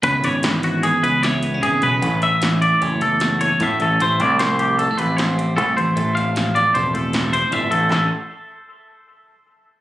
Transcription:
<<
  \new Staff \with { instrumentName = "Clean electric guitar" } { \time 5/4 \key a \major \tempo 4 = 153 b'8 cis''8 b'8 fis'8 gis'8 b'8 cis''4 gis'8 b'8~ | b'8 e''4 d''8 cis''8 a'4 cis''8 e''8 a'8 | c''8 d''8 c''8 g'8 a'8 b'8 c''4 a'8 c''8~ | c''8 f''4 d''8 c''8 a'4 c''8 e''8 a'8 |
a'8 r1 r8 | }
  \new Staff \with { instrumentName = "Clean electric guitar" } { \time 5/4 \key a \major << { b8 cis'4. b4 e'8 b16 cis'16 b8 cis'8 | a8 cis'4. a4 fis'8 cis'8 a8 cis'8 | a8 c'4. g16 a4~ a16 c'8 a8 c'8 | a8 c'4. a4 e'8 c'8 a8 c'8 |
<e a cis' fis'>8 r1 r8 | } \\ { cis4 e4. gis,4. cis4 | a,4 e4. e,4. a,4 | a,4 f4. a,4. a,4 | a,4 f4. a,4. a,4 |
a,8 r1 r8 | } >> }
  \new Staff \with { instrumentName = "Picked electric bass" } { \clef bass \time 5/4 \key a \major cis,8 gis,,2 cis,4. gis,,8 b,,8 | a,,2 fis,,2 a,8 a,,8 | a,,8 c,2 a,,4. c,8 a,,8 | a,,2 e,,2 g,,8 a,,8 |
a,,8 r1 r8 | }
  \new DrumStaff \with { instrumentName = "Drums" } \drummode { \time 5/4 <hh bd>8 hh8 <hh sn>8 hh8 hh8 <hh bd>8 <hh sn>8 hh8 <hh bd>8 <hh bd>8 | <hh bd>8 hh8 <hh sn>8 hh8 <hh bd>8 hh8 <hh sn>8 hh8 <hh bd sn>8 <hh bd>8 | <hh bd>8 hh8 <hh sn>8 hh8 hh8 <hh bd>8 <hh sn>8 hh8 <hh bd>8 <hh bd>8 | <hh bd>8 <hh sn>8 <hh sn>8 <hh sn>8 <hh bd sn>8 hh8 <hh sn>8 hh8 <hh bd>8 <hh bd>8 |
<hc sn>4 r4 r4 r4 r4 | }
>>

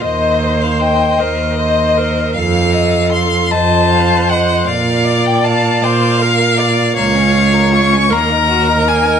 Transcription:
<<
  \new Staff \with { instrumentName = "Violin" } { \time 6/8 \key bes \major \tempo 4. = 52 ees''8. f''16 g''8 ees''4. | f''4 c'''8 a''4 ges''8 | f''8. g''16 a''8 f''4. | \key bes \minor f''4 des'''8 bes''4 aes''8 | }
  \new Staff \with { instrumentName = "Violin" } { \time 6/8 \key bes \major ees''8 c''8 ees''8 c''8 ees''8 c''8 | f''8 ees''8 f''8 ees''8 f''8 ees''8 | f''8 d''8 f''8 d''8 f''8 d''8 | \key bes \minor bes16 des'16 f'16 bes'16 f'16 des'16 bes16 ees'16 ges'16 ees'16 bes16 ees'16 | }
  \new Staff \with { instrumentName = "Viola" } { \time 6/8 \key bes \major c''4. bes'8 c''8 bes'8 | a'4. c''4. | d''4. c''8 bes'8 d''8 | \key bes \minor des''4. bes'4. | }
  \new Staff \with { instrumentName = "Cello" } { \clef bass \time 6/8 \key bes \major ees,4. ees,4. | f,4. f,4. | bes,4. bes,4. | \key bes \minor des,4. ees,4. | }
>>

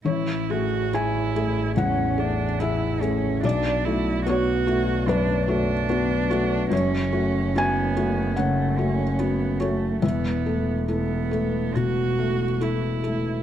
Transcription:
<<
  \new Staff \with { instrumentName = "Felt piano" } { \time 4/4 \key a \major \tempo 4 = 72 << { cis''4 gis''4 fis''4 e''4 | d''4 cis''4 b'4. r8 | cis''4 gis''4 fis''4. cis''8 | e''2. r4 | } \\ { a,,8 <a gis'>8 <e' gis'>8 <a gis'>8 e,8 <a gis'>8 <e' gis'>8 <a gis'>8 | b,,8 <a fis'>8 <b fis'>8 <a fis'>8 fis,8 <a fis'>8 <b fis'>8 <a fis'>8 | fis,8 <a fis'>8 <cis' fis'>8 <a fis'>8 cis8 <a fis'>8 <cis' fis'>8 <a fis'>8 | e,8 <a a'>8 <e' a'>8 <a a'>8 b,8 <a a'>8 <e' a'>8 <a a'>8 | } >> }
  \new Staff \with { instrumentName = "Cello" } { \time 4/4 \key a \major e'8 fis'8 e'4 cis'8 d'8 e'8 cis'8 | d'8 e'8 fis'4 d'8 d'4. | cis'4 b4 a8 cis'8 b8 a8 | b4 b4 fis'4 e'4 | }
  \new Staff \with { instrumentName = "Double bass" } { \clef bass \time 4/4 \key a \major a,,1 | b,,1 | fis,,1 | e,,1 | }
>>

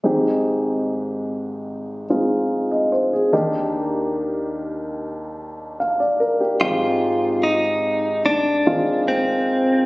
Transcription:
<<
  \new Staff \with { instrumentName = "Clean electric guitar" } { \time 4/4 \key aes \lydian \tempo 4 = 73 r1 | r1 | f'4 ees'4 d'4 c'4 | }
  \new Staff \with { instrumentName = "Grand piano" } { \time 4/4 \key aes \lydian << { r2. r16 ees''16 c''16 aes'16~ | aes'16 r2 r8. f''16 d''16 bes'16 g'16~ | g'16 r2. r8. | } \\ { <aes c' ees' g'>2~ <aes c' ees' g'>8 <aes c' ees' f'>4. | <bes d' ees' g'>1 | <aes c' ees' g'>2 r8 <ees aes c' f'>4. | } >> }
  \new Staff \with { instrumentName = "Grand piano" } { \clef bass \time 4/4 \key aes \lydian <aes,, aes,>1 | <ees, ees>1 | <aes,, aes,>1 | }
>>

